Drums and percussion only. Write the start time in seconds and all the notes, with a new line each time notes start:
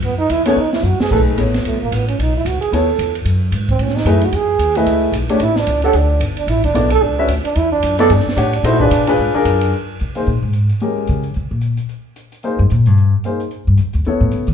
0.02 ride
0.29 hi-hat pedal, ride
0.46 ride
0.73 snare
0.84 hi-hat pedal
1.00 snare
1.11 kick, crash
1.38 hi-hat pedal, ride
1.54 snare, ride
1.65 ride
1.92 hi-hat pedal, ride
2.08 ride
2.20 ride
2.46 hi-hat pedal, ride
2.62 ride
2.73 ride
2.99 hi-hat pedal, ride
3.15 ride
3.26 ride
3.52 hi-hat pedal, ride
3.69 kick, ride
3.79 ride
3.88 snare
3.97 snare
4.06 hi-hat pedal, ride
4.21 ride
4.33 ride
4.59 hi-hat pedal, ride
4.75 ride
4.87 ride
5.13 hi-hat pedal, ride
5.29 ride
5.40 ride
5.56 snare
5.67 hi-hat pedal, ride
5.82 ride
5.93 ride
6.21 hi-hat pedal, ride
6.37 ride
6.48 ride
6.64 kick, ride
6.75 hi-hat pedal, ride
6.90 ride
7.28 hi-hat pedal, ride
7.45 ride
7.55 ride
7.83 hi-hat pedal, ride
7.99 ride
8.10 ride
8.19 snare
8.29 snare
8.38 hi-hat pedal, ride
8.53 ride
8.64 ride
8.80 kick
8.91 hi-hat pedal, ride
9.07 ride
9.45 hi-hat pedal, ride
9.61 ride
9.73 closed hi-hat
10.00 closed hi-hat
10.15 closed hi-hat
10.27 closed hi-hat
10.53 closed hi-hat
10.69 closed hi-hat
10.80 closed hi-hat
11.07 closed hi-hat
11.23 closed hi-hat
11.34 closed hi-hat
11.61 closed hi-hat
11.77 closed hi-hat
11.89 closed hi-hat
12.16 closed hi-hat
12.32 closed hi-hat
12.43 closed hi-hat
12.70 closed hi-hat
12.86 closed hi-hat
12.98 closed hi-hat
13.24 closed hi-hat
13.40 closed hi-hat
13.51 closed hi-hat
13.77 closed hi-hat
13.93 closed hi-hat
14.05 closed hi-hat
14.32 closed hi-hat
14.47 closed hi-hat